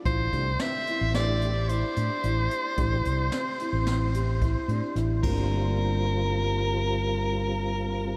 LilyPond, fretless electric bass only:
\new Staff \with { instrumentName = "Fretless electric bass" } { \clef bass \time 5/4 \key g \dorian \tempo 4 = 110 a,,8 c,8 r8. a,,4.~ a,,16 a,16 r16 a,,8 r8 | a,,8 c,8 r8. a,,4.~ a,,16 a,16 r16 a,,8 g,,8~ | g,,1~ g,,4 | }